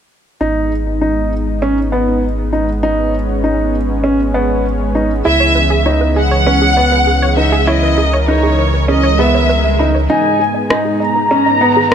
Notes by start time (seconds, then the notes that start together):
0.40 G#1 G#3 B3 D#4
1.01 D#4
1.62 C#4
1.92 B3
2.53 D#4
2.83 C#4 D#4
3.44 D#4
4.04 C#4
4.34 B3
4.95 D#4
5.25 C#2 C#3 E3 E4 G#4 E5
5.40 C#5
5.55 B4
5.70 G#4
5.86 D#4 C#5
6.01 B4
6.16 G#4 F#5
6.31 C#5
6.47 C#4 B4
6.62 G#4
6.77 B3 C#5
6.92 B4
7.07 G#4
7.22 C#5
7.37 D#4 B4 E5
7.52 G#4
7.67 E4 A#4 C#5 D#5
7.83 B4
7.98 G#4
8.13 C#5
8.21 D#5
8.28 D#4 B4 C#5
8.43 G#4
8.59 C#5
8.74 B4
8.88 C#4 G#4 D#5, swell
9.03 C#5
9.19 B3 G#4 E5
9.35 C#5
9.49 B4
9.64 E5
9.79 D#4 B5
9.95 C#5
10.09 G#2 G#3 B3 D#4 D#5 G#5, riser
10.25 B4
10.39 G#4
10.54 D#5
10.70 D#4, cross-stick
10.85 G#4
11.00 D#5 A#5
11.16 B4
11.31 C#4 G#4
11.46 D#5
11.61 B3 B4
11.77 G#4
11.91 D#5, cross-stick